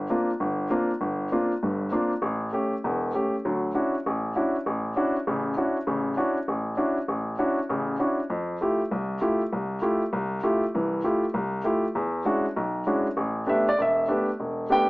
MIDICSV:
0, 0, Header, 1, 2, 480
1, 0, Start_track
1, 0, Tempo, 304105
1, 1599, Time_signature, 4, 2, 24, 8
1, 23512, End_track
2, 0, Start_track
2, 0, Title_t, "Grand piano"
2, 0, Program_c, 0, 0
2, 155, Note_on_c, 0, 58, 53
2, 159, Note_on_c, 0, 60, 49
2, 162, Note_on_c, 0, 62, 47
2, 170, Note_on_c, 0, 65, 58
2, 464, Note_off_c, 0, 58, 0
2, 467, Note_off_c, 0, 60, 0
2, 468, Note_off_c, 0, 62, 0
2, 472, Note_off_c, 0, 65, 0
2, 633, Note_on_c, 0, 31, 66
2, 1046, Note_off_c, 0, 31, 0
2, 1106, Note_on_c, 0, 58, 55
2, 1110, Note_on_c, 0, 60, 51
2, 1112, Note_on_c, 0, 62, 44
2, 1115, Note_on_c, 0, 65, 59
2, 1419, Note_off_c, 0, 58, 0
2, 1421, Note_off_c, 0, 60, 0
2, 1422, Note_off_c, 0, 62, 0
2, 1424, Note_off_c, 0, 65, 0
2, 1588, Note_on_c, 0, 31, 62
2, 2003, Note_off_c, 0, 31, 0
2, 2079, Note_on_c, 0, 58, 48
2, 2083, Note_on_c, 0, 60, 47
2, 2087, Note_on_c, 0, 62, 48
2, 2099, Note_on_c, 0, 65, 60
2, 2385, Note_off_c, 0, 58, 0
2, 2387, Note_off_c, 0, 60, 0
2, 2389, Note_off_c, 0, 62, 0
2, 2395, Note_off_c, 0, 65, 0
2, 2570, Note_on_c, 0, 43, 62
2, 2577, Note_on_c, 0, 31, 58
2, 2974, Note_off_c, 0, 43, 0
2, 2977, Note_off_c, 0, 31, 0
2, 3025, Note_on_c, 0, 58, 52
2, 3027, Note_on_c, 0, 60, 45
2, 3039, Note_on_c, 0, 62, 50
2, 3043, Note_on_c, 0, 65, 56
2, 3337, Note_off_c, 0, 58, 0
2, 3338, Note_off_c, 0, 60, 0
2, 3344, Note_off_c, 0, 62, 0
2, 3346, Note_off_c, 0, 65, 0
2, 3503, Note_on_c, 0, 33, 61
2, 3918, Note_off_c, 0, 33, 0
2, 3987, Note_on_c, 0, 57, 49
2, 3992, Note_on_c, 0, 61, 46
2, 4006, Note_on_c, 0, 67, 56
2, 4297, Note_off_c, 0, 57, 0
2, 4299, Note_off_c, 0, 61, 0
2, 4306, Note_off_c, 0, 67, 0
2, 4489, Note_on_c, 0, 28, 61
2, 4489, Note_on_c, 0, 40, 65
2, 4891, Note_off_c, 0, 28, 0
2, 4891, Note_off_c, 0, 40, 0
2, 4961, Note_on_c, 0, 57, 50
2, 4970, Note_on_c, 0, 61, 45
2, 4974, Note_on_c, 0, 67, 58
2, 5263, Note_off_c, 0, 57, 0
2, 5267, Note_off_c, 0, 61, 0
2, 5269, Note_off_c, 0, 67, 0
2, 5444, Note_on_c, 0, 54, 62
2, 5446, Note_on_c, 0, 38, 59
2, 5848, Note_off_c, 0, 54, 0
2, 5849, Note_off_c, 0, 38, 0
2, 5913, Note_on_c, 0, 61, 53
2, 5915, Note_on_c, 0, 62, 50
2, 5923, Note_on_c, 0, 64, 47
2, 5923, Note_on_c, 0, 66, 58
2, 6218, Note_off_c, 0, 61, 0
2, 6219, Note_off_c, 0, 62, 0
2, 6223, Note_off_c, 0, 64, 0
2, 6223, Note_off_c, 0, 66, 0
2, 6414, Note_on_c, 0, 33, 60
2, 6812, Note_off_c, 0, 33, 0
2, 6872, Note_on_c, 0, 61, 52
2, 6887, Note_on_c, 0, 66, 56
2, 6888, Note_on_c, 0, 62, 44
2, 6888, Note_on_c, 0, 64, 52
2, 7177, Note_off_c, 0, 61, 0
2, 7184, Note_off_c, 0, 62, 0
2, 7184, Note_off_c, 0, 66, 0
2, 7185, Note_off_c, 0, 64, 0
2, 7360, Note_on_c, 0, 33, 63
2, 7764, Note_off_c, 0, 33, 0
2, 7833, Note_on_c, 0, 61, 55
2, 7836, Note_on_c, 0, 62, 53
2, 7845, Note_on_c, 0, 64, 49
2, 7846, Note_on_c, 0, 66, 61
2, 8136, Note_off_c, 0, 61, 0
2, 8138, Note_off_c, 0, 62, 0
2, 8142, Note_off_c, 0, 64, 0
2, 8143, Note_off_c, 0, 66, 0
2, 8321, Note_on_c, 0, 33, 64
2, 8322, Note_on_c, 0, 49, 65
2, 8724, Note_off_c, 0, 33, 0
2, 8724, Note_off_c, 0, 49, 0
2, 8790, Note_on_c, 0, 61, 55
2, 8790, Note_on_c, 0, 62, 45
2, 8795, Note_on_c, 0, 64, 49
2, 8803, Note_on_c, 0, 66, 59
2, 9094, Note_off_c, 0, 61, 0
2, 9094, Note_off_c, 0, 62, 0
2, 9097, Note_off_c, 0, 64, 0
2, 9100, Note_off_c, 0, 66, 0
2, 9264, Note_on_c, 0, 49, 65
2, 9271, Note_on_c, 0, 33, 60
2, 9674, Note_off_c, 0, 49, 0
2, 9678, Note_off_c, 0, 33, 0
2, 9742, Note_on_c, 0, 61, 57
2, 9742, Note_on_c, 0, 62, 52
2, 9752, Note_on_c, 0, 64, 47
2, 9752, Note_on_c, 0, 66, 62
2, 10049, Note_off_c, 0, 61, 0
2, 10049, Note_off_c, 0, 62, 0
2, 10054, Note_off_c, 0, 64, 0
2, 10054, Note_off_c, 0, 66, 0
2, 10230, Note_on_c, 0, 33, 63
2, 10637, Note_off_c, 0, 33, 0
2, 10687, Note_on_c, 0, 61, 54
2, 10689, Note_on_c, 0, 62, 52
2, 10693, Note_on_c, 0, 64, 55
2, 10707, Note_on_c, 0, 66, 61
2, 11001, Note_off_c, 0, 61, 0
2, 11003, Note_off_c, 0, 62, 0
2, 11004, Note_off_c, 0, 64, 0
2, 11011, Note_off_c, 0, 66, 0
2, 11181, Note_on_c, 0, 33, 59
2, 11592, Note_off_c, 0, 33, 0
2, 11657, Note_on_c, 0, 61, 54
2, 11661, Note_on_c, 0, 62, 51
2, 11665, Note_on_c, 0, 64, 50
2, 11667, Note_on_c, 0, 66, 61
2, 11966, Note_off_c, 0, 61, 0
2, 11968, Note_off_c, 0, 62, 0
2, 11970, Note_off_c, 0, 64, 0
2, 11971, Note_off_c, 0, 66, 0
2, 12145, Note_on_c, 0, 49, 65
2, 12150, Note_on_c, 0, 33, 60
2, 12554, Note_off_c, 0, 49, 0
2, 12557, Note_off_c, 0, 33, 0
2, 12613, Note_on_c, 0, 61, 52
2, 12625, Note_on_c, 0, 64, 45
2, 12625, Note_on_c, 0, 66, 54
2, 12627, Note_on_c, 0, 62, 48
2, 12924, Note_off_c, 0, 61, 0
2, 12930, Note_off_c, 0, 64, 0
2, 12930, Note_off_c, 0, 66, 0
2, 12931, Note_off_c, 0, 62, 0
2, 13098, Note_on_c, 0, 41, 64
2, 13510, Note_off_c, 0, 41, 0
2, 13589, Note_on_c, 0, 57, 55
2, 13601, Note_on_c, 0, 64, 49
2, 13603, Note_on_c, 0, 65, 45
2, 13610, Note_on_c, 0, 67, 60
2, 13892, Note_off_c, 0, 57, 0
2, 13898, Note_off_c, 0, 64, 0
2, 13899, Note_off_c, 0, 65, 0
2, 13903, Note_off_c, 0, 67, 0
2, 14070, Note_on_c, 0, 36, 65
2, 14477, Note_off_c, 0, 36, 0
2, 14540, Note_on_c, 0, 57, 54
2, 14544, Note_on_c, 0, 65, 48
2, 14545, Note_on_c, 0, 64, 50
2, 14550, Note_on_c, 0, 67, 56
2, 14848, Note_off_c, 0, 57, 0
2, 14850, Note_off_c, 0, 65, 0
2, 14851, Note_off_c, 0, 64, 0
2, 14853, Note_off_c, 0, 67, 0
2, 15035, Note_on_c, 0, 36, 60
2, 15440, Note_off_c, 0, 36, 0
2, 15496, Note_on_c, 0, 57, 57
2, 15496, Note_on_c, 0, 64, 52
2, 15510, Note_on_c, 0, 65, 51
2, 15512, Note_on_c, 0, 67, 58
2, 15807, Note_off_c, 0, 57, 0
2, 15807, Note_off_c, 0, 64, 0
2, 15814, Note_off_c, 0, 65, 0
2, 15815, Note_off_c, 0, 67, 0
2, 15986, Note_on_c, 0, 36, 67
2, 16396, Note_off_c, 0, 36, 0
2, 16466, Note_on_c, 0, 57, 57
2, 16469, Note_on_c, 0, 64, 49
2, 16474, Note_on_c, 0, 67, 59
2, 16480, Note_on_c, 0, 65, 53
2, 16773, Note_off_c, 0, 57, 0
2, 16774, Note_off_c, 0, 64, 0
2, 16777, Note_off_c, 0, 67, 0
2, 16780, Note_off_c, 0, 65, 0
2, 16962, Note_on_c, 0, 52, 64
2, 16966, Note_on_c, 0, 36, 60
2, 17366, Note_off_c, 0, 52, 0
2, 17368, Note_off_c, 0, 36, 0
2, 17428, Note_on_c, 0, 57, 53
2, 17429, Note_on_c, 0, 65, 51
2, 17430, Note_on_c, 0, 64, 49
2, 17436, Note_on_c, 0, 67, 60
2, 17735, Note_off_c, 0, 57, 0
2, 17735, Note_off_c, 0, 64, 0
2, 17735, Note_off_c, 0, 65, 0
2, 17738, Note_off_c, 0, 67, 0
2, 17900, Note_on_c, 0, 36, 67
2, 18315, Note_off_c, 0, 36, 0
2, 18374, Note_on_c, 0, 57, 53
2, 18377, Note_on_c, 0, 64, 48
2, 18386, Note_on_c, 0, 65, 46
2, 18390, Note_on_c, 0, 67, 61
2, 18688, Note_off_c, 0, 57, 0
2, 18690, Note_off_c, 0, 64, 0
2, 18694, Note_off_c, 0, 65, 0
2, 18696, Note_off_c, 0, 67, 0
2, 18866, Note_on_c, 0, 40, 64
2, 19279, Note_off_c, 0, 40, 0
2, 19336, Note_on_c, 0, 56, 56
2, 19341, Note_on_c, 0, 62, 48
2, 19343, Note_on_c, 0, 61, 49
2, 19345, Note_on_c, 0, 64, 48
2, 19351, Note_on_c, 0, 66, 63
2, 19651, Note_off_c, 0, 56, 0
2, 19653, Note_off_c, 0, 62, 0
2, 19654, Note_off_c, 0, 61, 0
2, 19655, Note_off_c, 0, 64, 0
2, 19658, Note_off_c, 0, 66, 0
2, 19832, Note_on_c, 0, 35, 64
2, 20243, Note_off_c, 0, 35, 0
2, 20308, Note_on_c, 0, 61, 50
2, 20310, Note_on_c, 0, 56, 55
2, 20311, Note_on_c, 0, 62, 51
2, 20317, Note_on_c, 0, 64, 47
2, 20319, Note_on_c, 0, 66, 59
2, 20618, Note_off_c, 0, 61, 0
2, 20619, Note_off_c, 0, 56, 0
2, 20619, Note_off_c, 0, 62, 0
2, 20622, Note_off_c, 0, 64, 0
2, 20623, Note_off_c, 0, 66, 0
2, 20785, Note_on_c, 0, 33, 66
2, 21200, Note_off_c, 0, 33, 0
2, 21256, Note_on_c, 0, 59, 47
2, 21258, Note_on_c, 0, 62, 50
2, 21259, Note_on_c, 0, 57, 53
2, 21269, Note_on_c, 0, 67, 59
2, 21299, Note_on_c, 0, 76, 64
2, 21567, Note_off_c, 0, 76, 0
2, 21573, Note_off_c, 0, 59, 0
2, 21574, Note_off_c, 0, 57, 0
2, 21574, Note_off_c, 0, 62, 0
2, 21580, Note_off_c, 0, 67, 0
2, 21605, Note_on_c, 0, 74, 77
2, 21751, Note_on_c, 0, 28, 65
2, 21771, Note_off_c, 0, 74, 0
2, 21809, Note_on_c, 0, 76, 69
2, 22165, Note_off_c, 0, 28, 0
2, 22226, Note_on_c, 0, 57, 52
2, 22232, Note_on_c, 0, 62, 50
2, 22237, Note_on_c, 0, 59, 46
2, 22246, Note_on_c, 0, 67, 55
2, 22500, Note_off_c, 0, 76, 0
2, 22539, Note_off_c, 0, 57, 0
2, 22542, Note_off_c, 0, 62, 0
2, 22544, Note_off_c, 0, 59, 0
2, 22549, Note_off_c, 0, 67, 0
2, 22721, Note_on_c, 0, 28, 61
2, 23131, Note_off_c, 0, 28, 0
2, 23196, Note_on_c, 0, 57, 54
2, 23197, Note_on_c, 0, 59, 49
2, 23201, Note_on_c, 0, 67, 55
2, 23207, Note_on_c, 0, 62, 49
2, 23236, Note_on_c, 0, 79, 87
2, 23498, Note_off_c, 0, 79, 0
2, 23505, Note_off_c, 0, 57, 0
2, 23506, Note_off_c, 0, 59, 0
2, 23508, Note_off_c, 0, 67, 0
2, 23510, Note_off_c, 0, 62, 0
2, 23512, End_track
0, 0, End_of_file